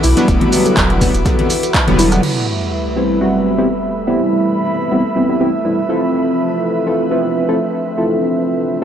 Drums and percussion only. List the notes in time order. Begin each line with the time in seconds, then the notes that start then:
0.04 open hi-hat, maracas
0.17 closed hi-hat, maracas
0.28 kick, closed hi-hat, maracas
0.41 closed hi-hat, high conga
0.53 open hi-hat, maracas
0.65 closed hi-hat, maracas
0.77 kick, clap, closed hi-hat, maracas
0.90 closed hi-hat
1.01 kick, open hi-hat, low conga, maracas
1.14 closed hi-hat, maracas
1.25 kick, closed hi-hat, maracas
1.39 closed hi-hat, high conga
1.50 open hi-hat, maracas
1.63 closed hi-hat, maracas
1.74 kick, clap, closed hi-hat, maracas
1.87 closed hi-hat, high conga
1.99 open hi-hat, maracas
2.12 cross-stick, closed hi-hat, maracas
2.23 crash